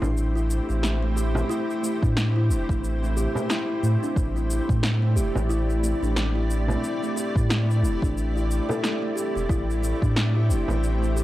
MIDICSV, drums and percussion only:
0, 0, Header, 1, 3, 480
1, 0, Start_track
1, 0, Key_signature, 0, "minor"
1, 0, Tempo, 666667
1, 1075, Time_signature, 4, 2, 24, 8
1, 8091, End_track
2, 0, Start_track
2, 0, Title_t, "Frame drum"
2, 13, Note_on_c, 9, 64, 76
2, 85, Note_off_c, 9, 64, 0
2, 971, Note_on_c, 9, 64, 89
2, 1043, Note_off_c, 9, 64, 0
2, 2413, Note_on_c, 9, 64, 77
2, 2485, Note_off_c, 9, 64, 0
2, 3854, Note_on_c, 9, 64, 77
2, 3926, Note_off_c, 9, 64, 0
2, 4812, Note_on_c, 9, 64, 87
2, 4884, Note_off_c, 9, 64, 0
2, 6258, Note_on_c, 9, 64, 74
2, 6330, Note_off_c, 9, 64, 0
2, 7691, Note_on_c, 9, 64, 74
2, 7763, Note_off_c, 9, 64, 0
2, 8091, End_track
3, 0, Start_track
3, 0, Title_t, "Drums"
3, 26, Note_on_c, 9, 82, 29
3, 98, Note_off_c, 9, 82, 0
3, 125, Note_on_c, 9, 82, 42
3, 197, Note_off_c, 9, 82, 0
3, 266, Note_on_c, 9, 82, 30
3, 338, Note_off_c, 9, 82, 0
3, 363, Note_on_c, 9, 82, 72
3, 435, Note_off_c, 9, 82, 0
3, 503, Note_on_c, 9, 82, 30
3, 575, Note_off_c, 9, 82, 0
3, 598, Note_on_c, 9, 38, 95
3, 605, Note_on_c, 9, 82, 41
3, 670, Note_off_c, 9, 38, 0
3, 677, Note_off_c, 9, 82, 0
3, 844, Note_on_c, 9, 82, 70
3, 916, Note_off_c, 9, 82, 0
3, 986, Note_on_c, 9, 82, 30
3, 1058, Note_off_c, 9, 82, 0
3, 1086, Note_on_c, 9, 82, 46
3, 1158, Note_off_c, 9, 82, 0
3, 1228, Note_on_c, 9, 82, 29
3, 1300, Note_off_c, 9, 82, 0
3, 1325, Note_on_c, 9, 82, 76
3, 1397, Note_off_c, 9, 82, 0
3, 1458, Note_on_c, 9, 36, 101
3, 1468, Note_on_c, 9, 82, 34
3, 1530, Note_off_c, 9, 36, 0
3, 1540, Note_off_c, 9, 82, 0
3, 1560, Note_on_c, 9, 38, 92
3, 1566, Note_on_c, 9, 82, 43
3, 1632, Note_off_c, 9, 38, 0
3, 1638, Note_off_c, 9, 82, 0
3, 1806, Note_on_c, 9, 82, 70
3, 1878, Note_off_c, 9, 82, 0
3, 1938, Note_on_c, 9, 36, 98
3, 1948, Note_on_c, 9, 82, 31
3, 2010, Note_off_c, 9, 36, 0
3, 2020, Note_off_c, 9, 82, 0
3, 2046, Note_on_c, 9, 82, 46
3, 2118, Note_off_c, 9, 82, 0
3, 2188, Note_on_c, 9, 82, 31
3, 2260, Note_off_c, 9, 82, 0
3, 2283, Note_on_c, 9, 82, 75
3, 2355, Note_off_c, 9, 82, 0
3, 2424, Note_on_c, 9, 82, 33
3, 2496, Note_off_c, 9, 82, 0
3, 2518, Note_on_c, 9, 38, 93
3, 2524, Note_on_c, 9, 82, 43
3, 2590, Note_off_c, 9, 38, 0
3, 2596, Note_off_c, 9, 82, 0
3, 2764, Note_on_c, 9, 82, 73
3, 2836, Note_off_c, 9, 82, 0
3, 2904, Note_on_c, 9, 82, 32
3, 2976, Note_off_c, 9, 82, 0
3, 2997, Note_on_c, 9, 36, 124
3, 3004, Note_on_c, 9, 82, 43
3, 3069, Note_off_c, 9, 36, 0
3, 3076, Note_off_c, 9, 82, 0
3, 3144, Note_on_c, 9, 82, 29
3, 3216, Note_off_c, 9, 82, 0
3, 3243, Note_on_c, 9, 82, 78
3, 3315, Note_off_c, 9, 82, 0
3, 3378, Note_on_c, 9, 36, 99
3, 3384, Note_on_c, 9, 82, 31
3, 3450, Note_off_c, 9, 36, 0
3, 3456, Note_off_c, 9, 82, 0
3, 3478, Note_on_c, 9, 38, 96
3, 3484, Note_on_c, 9, 82, 41
3, 3550, Note_off_c, 9, 38, 0
3, 3556, Note_off_c, 9, 82, 0
3, 3723, Note_on_c, 9, 82, 79
3, 3795, Note_off_c, 9, 82, 0
3, 3866, Note_on_c, 9, 82, 32
3, 3938, Note_off_c, 9, 82, 0
3, 3963, Note_on_c, 9, 82, 46
3, 4035, Note_off_c, 9, 82, 0
3, 4104, Note_on_c, 9, 82, 30
3, 4176, Note_off_c, 9, 82, 0
3, 4204, Note_on_c, 9, 82, 75
3, 4276, Note_off_c, 9, 82, 0
3, 4345, Note_on_c, 9, 82, 33
3, 4417, Note_off_c, 9, 82, 0
3, 4438, Note_on_c, 9, 38, 98
3, 4444, Note_on_c, 9, 82, 46
3, 4510, Note_off_c, 9, 38, 0
3, 4516, Note_off_c, 9, 82, 0
3, 4683, Note_on_c, 9, 82, 75
3, 4755, Note_off_c, 9, 82, 0
3, 4826, Note_on_c, 9, 82, 30
3, 4898, Note_off_c, 9, 82, 0
3, 4925, Note_on_c, 9, 82, 44
3, 4997, Note_off_c, 9, 82, 0
3, 5065, Note_on_c, 9, 82, 29
3, 5137, Note_off_c, 9, 82, 0
3, 5165, Note_on_c, 9, 82, 76
3, 5237, Note_off_c, 9, 82, 0
3, 5296, Note_on_c, 9, 36, 106
3, 5307, Note_on_c, 9, 82, 35
3, 5368, Note_off_c, 9, 36, 0
3, 5379, Note_off_c, 9, 82, 0
3, 5402, Note_on_c, 9, 38, 90
3, 5408, Note_on_c, 9, 82, 43
3, 5474, Note_off_c, 9, 38, 0
3, 5480, Note_off_c, 9, 82, 0
3, 5549, Note_on_c, 9, 82, 28
3, 5621, Note_off_c, 9, 82, 0
3, 5648, Note_on_c, 9, 82, 74
3, 5720, Note_off_c, 9, 82, 0
3, 5776, Note_on_c, 9, 36, 105
3, 5787, Note_on_c, 9, 82, 33
3, 5848, Note_off_c, 9, 36, 0
3, 5859, Note_off_c, 9, 82, 0
3, 5886, Note_on_c, 9, 82, 46
3, 5958, Note_off_c, 9, 82, 0
3, 6028, Note_on_c, 9, 82, 30
3, 6100, Note_off_c, 9, 82, 0
3, 6126, Note_on_c, 9, 82, 76
3, 6198, Note_off_c, 9, 82, 0
3, 6270, Note_on_c, 9, 82, 30
3, 6342, Note_off_c, 9, 82, 0
3, 6362, Note_on_c, 9, 38, 88
3, 6368, Note_on_c, 9, 82, 43
3, 6434, Note_off_c, 9, 38, 0
3, 6440, Note_off_c, 9, 82, 0
3, 6605, Note_on_c, 9, 82, 76
3, 6677, Note_off_c, 9, 82, 0
3, 6746, Note_on_c, 9, 82, 32
3, 6818, Note_off_c, 9, 82, 0
3, 6835, Note_on_c, 9, 36, 113
3, 6845, Note_on_c, 9, 82, 42
3, 6907, Note_off_c, 9, 36, 0
3, 6917, Note_off_c, 9, 82, 0
3, 6987, Note_on_c, 9, 82, 28
3, 7059, Note_off_c, 9, 82, 0
3, 7083, Note_on_c, 9, 82, 77
3, 7155, Note_off_c, 9, 82, 0
3, 7216, Note_on_c, 9, 36, 92
3, 7225, Note_on_c, 9, 82, 30
3, 7288, Note_off_c, 9, 36, 0
3, 7297, Note_off_c, 9, 82, 0
3, 7318, Note_on_c, 9, 38, 91
3, 7324, Note_on_c, 9, 82, 43
3, 7390, Note_off_c, 9, 38, 0
3, 7396, Note_off_c, 9, 82, 0
3, 7564, Note_on_c, 9, 82, 76
3, 7636, Note_off_c, 9, 82, 0
3, 7705, Note_on_c, 9, 82, 32
3, 7777, Note_off_c, 9, 82, 0
3, 7803, Note_on_c, 9, 82, 43
3, 7875, Note_off_c, 9, 82, 0
3, 7945, Note_on_c, 9, 82, 29
3, 8017, Note_off_c, 9, 82, 0
3, 8043, Note_on_c, 9, 82, 72
3, 8091, Note_off_c, 9, 82, 0
3, 8091, End_track
0, 0, End_of_file